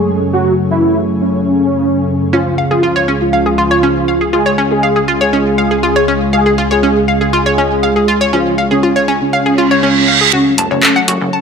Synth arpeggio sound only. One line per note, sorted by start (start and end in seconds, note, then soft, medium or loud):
2.33 2.37 C#4 loud
2.58 2.65 F5 medium
2.71 2.78 G#4 medium
2.83 2.87 F4 loud
2.96 3.06 C#5 loud
3.08 3.12 C#4 loud
3.33 3.40 F5 medium
3.46 3.53 G#4 medium
3.58 3.62 F4 loud
3.71 3.81 C#5 loud
3.83 3.87 C#4 loud
4.08 4.15 F5 medium
4.21 4.28 G#4 medium
4.33 4.37 F4 loud
4.46 4.56 C#5 loud
4.58 4.62 C#4 loud
4.83 4.90 F5 medium
4.96 5.03 G#4 medium
5.08 5.12 F4 loud
5.21 5.31 C#5 loud
5.33 5.37 C#4 loud
5.58 5.65 F5 medium
5.71 5.78 G#4 medium
5.83 5.87 F4 loud
5.96 6.06 C#5 loud
6.08 6.12 C#4 loud
6.33 6.40 F5 medium
6.46 6.53 G#4 medium
6.58 6.62 F4 loud
6.71 6.81 C#5 loud
6.83 6.87 C#4 loud
7.08 7.15 F5 medium
7.21 7.28 G#4 medium
7.33 7.37 F4 loud
7.46 7.56 C#5 loud
7.58 7.62 C#4 loud
7.83 7.90 F5 medium
7.96 8.03 G#4 medium
8.08 8.12 F4 loud
8.21 8.31 C#5 loud
8.33 8.37 C#4 medium
8.58 8.65 F5 medium
8.71 8.78 G#4 medium
8.83 8.87 F4 loud
8.96 9.06 C#5 loud
9.08 9.12 C#4 loud
9.33 9.40 F5 medium
9.46 9.53 G#4 medium
9.58 9.62 F4 loud
9.71 9.81 C#5 loud
9.83 9.87 C#4 loud
10.08 10.15 F5 medium
10.21 10.28 G#4 medium
10.33 10.37 F#4 loud
10.58 10.65 A5 medium
10.71 10.78 C#5 medium
10.83 10.87 A4 loud
10.96 11.06 F#5 loud
11.08 11.12 F#4 loud
11.33 11.40 A5 medium